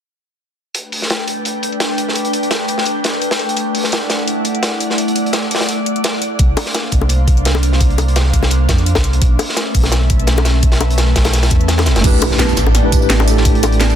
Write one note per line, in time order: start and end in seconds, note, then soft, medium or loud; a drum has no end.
0.75 6.35 A3 medium
0.75 3.54 D4 medium
0.75 3.54 B4 medium
0.75 3.54 G5 medium
0.75 closed hi-hat medium
0.92 closed hi-hat medium
0.92 open hi-hat medium
1.02 snare soft
1.10 snare loud
1.10 closed hi-hat medium
1.28 closed hi-hat medium
1.45 closed hi-hat medium
1.63 closed hi-hat medium
1.72 closed hi-hat soft
1.80 snare loud
1.80 closed hi-hat medium
1.98 closed hi-hat medium
2.09 snare soft
2.15 closed hi-hat medium
2.25 closed hi-hat soft
2.33 closed hi-hat medium
2.43 closed hi-hat soft
2.51 snare loud
2.51 closed hi-hat medium
2.68 closed hi-hat medium
2.78 snare soft
2.85 closed hi-hat medium
3.04 snare loud
3.04 closed hi-hat medium
3.14 closed hi-hat soft
3.22 closed hi-hat medium
3.31 snare loud
3.31 closed hi-hat medium
3.39 closed hi-hat medium
3.49 closed hi-hat medium
3.57 6.36 E4 medium
3.57 6.37 D5 medium
3.57 6.36 F#5 medium
3.57 closed hi-hat medium
3.75 closed hi-hat medium
3.75 open hi-hat medium
3.84 snare soft
3.92 snare loud
3.92 closed hi-hat medium
4.10 snare loud
4.10 closed hi-hat medium
4.27 closed hi-hat medium
4.45 closed hi-hat medium
4.55 closed hi-hat soft
4.63 snare loud
4.63 closed hi-hat medium
4.80 closed hi-hat medium
4.90 snare soft
4.98 closed hi-hat medium
5.08 closed hi-hat soft
5.16 closed hi-hat medium
5.26 closed hi-hat soft
5.33 snare loud
5.33 closed hi-hat medium
5.51 snare medium
5.51 closed hi-hat medium
5.56 closed hi-hat medium
5.61 snare loud
5.61 closed hi-hat medium
5.68 closed hi-hat medium
5.86 closed hi-hat medium
5.96 closed hi-hat soft
6.04 snare loud
6.04 closed hi-hat medium
6.22 closed hi-hat medium
6.39 6.55 C2 medium
6.39 9.19 A#3 medium
6.39 9.19 D4 medium
6.39 9.19 C5 medium
6.39 9.19 F5 medium
6.39 kick loud
6.39 closed hi-hat medium
6.57 closed hi-hat medium
6.57 open hi-hat medium
6.57 high bongo medium
6.66 snare soft
6.75 snare loud
6.75 closed hi-hat medium
6.92 8.32 C2 loud
6.92 kick medium
6.92 closed hi-hat medium
7.01 high bongo medium
7.09 closed hi-hat medium
7.28 kick loud
7.28 closed hi-hat medium
7.37 closed hi-hat soft
7.45 snare loud
7.45 closed hi-hat medium
7.55 high bongo medium
7.63 closed hi-hat medium
7.73 snare soft
7.80 kick loud
7.80 closed hi-hat medium
7.90 closed hi-hat soft
7.98 closed hi-hat medium
7.98 high bongo medium
8.08 closed hi-hat soft
8.16 snare loud
8.16 closed hi-hat medium
8.33 8.67 C2 medium
8.33 kick medium
8.33 closed hi-hat medium
8.43 snare medium
8.43 high bongo medium
8.51 closed hi-hat medium
8.69 8.94 F2 medium
8.69 kick loud
8.69 snare medium
8.69 closed hi-hat medium
8.78 closed hi-hat soft
8.86 closed hi-hat medium
8.95 9.20 C2 medium
8.95 kick medium
8.95 snare medium
8.95 closed hi-hat medium
8.95 high bongo medium
9.04 closed hi-hat medium
9.13 closed hi-hat medium
9.22 9.38 B1 loud
9.22 12.01 A3 medium
9.22 12.01 C#4 medium
9.22 12.01 B4 medium
9.22 12.01 E5 medium
9.22 kick loud
9.22 closed hi-hat medium
9.39 closed hi-hat medium
9.39 open hi-hat medium
9.39 high bongo medium
9.49 snare soft
9.57 snare loud
9.57 closed hi-hat medium
9.74 11.14 B1 loud
9.74 kick medium
9.74 closed hi-hat medium
9.74 open hi-hat medium
9.83 snare soft
9.83 high bongo medium
9.92 snare medium
9.92 closed hi-hat medium
10.10 kick loud
10.10 closed hi-hat medium
10.19 closed hi-hat soft
10.27 snare loud
10.27 closed hi-hat medium
10.38 high bongo medium
10.45 snare loud
10.45 closed hi-hat medium
10.63 kick loud
10.63 closed hi-hat medium
10.63 closed hi-hat loud
10.72 snare medium
10.72 closed hi-hat medium
10.81 closed hi-hat medium
10.81 high bongo medium
10.90 closed hi-hat medium
10.98 snare loud
10.98 closed hi-hat medium
11.16 11.50 B1 medium
11.16 kick medium
11.16 snare loud
11.16 closed hi-hat medium
11.25 snare loud
11.25 closed hi-hat medium
11.25 high bongo medium
11.33 snare loud
11.33 closed hi-hat loud
11.33 closed hi-hat medium
11.43 snare loud
11.43 closed hi-hat soft
11.43 closed hi-hat medium
11.50 11.88 E2 medium
11.50 kick loud
11.50 closed hi-hat medium
11.61 closed hi-hat soft
11.68 snare loud
11.68 closed hi-hat medium
11.78 snare medium
11.78 closed hi-hat medium
11.78 high bongo loud
11.86 11.95 A1 loud
11.86 snare loud
11.86 closed hi-hat medium
11.96 12.03 F#1 loud
11.96 snare loud
11.96 closed hi-hat medium
11.96 closed hi-hat soft
12.01 12.20 A1 loud
12.01 12.55 A3 loud
12.01 12.56 D4 loud
12.01 12.57 E4 loud
12.01 13.96 G4 medium
12.01 13.96 B4 medium
12.01 13.96 D5 medium
12.01 13.96 A5 medium
12.01 kick loud
12.01 closed hi-hat loud
12.01 closed hi-hat medium
12.01 crash loud
12.01 impact medium
12.05 12.58 G4 loud
12.05 12.58 B4 loud
12.22 closed hi-hat medium
12.22 open hi-hat medium
12.22 tambourine medium
12.22 high bongo loud
12.31 snare soft
12.39 snare loud
12.39 closed hi-hat medium
12.39 closed hi-hat loud
12.49 tambourine soft
12.57 13.96 A1 loud
12.57 snare medium
12.57 closed hi-hat medium
12.57 tambourine medium
12.66 high bongo medium
12.75 snare medium
12.75 closed hi-hat loud
12.83 12.99 A3 medium
12.83 12.99 D4 medium
12.83 12.99 E4 medium
12.83 13.00 G4 medium
12.83 13.00 B4 loud
12.92 kick loud
12.92 closed hi-hat medium
12.92 tambourine medium
13.00 13.23 A3 medium
13.00 13.25 D4 medium
13.00 13.26 E4 medium
13.00 13.26 G4 medium
13.00 13.26 B4 medium
13.00 tambourine soft
13.10 snare loud
13.10 closed hi-hat loud
13.20 high bongo loud
13.25 13.96 A3 medium
13.25 13.96 D4 medium
13.25 13.96 E4 medium
13.25 closed hi-hat medium
13.25 tambourine medium
13.29 13.96 G4 medium
13.29 13.96 A4 medium
13.37 snare soft
13.45 kick loud
13.45 closed hi-hat loud
13.45 closed hi-hat medium
13.55 closed hi-hat soft
13.63 closed hi-hat medium
13.63 tambourine medium
13.63 high bongo loud
13.72 closed hi-hat soft
13.81 snare loud
13.81 closed hi-hat medium
13.81 closed hi-hat loud
13.90 tambourine soft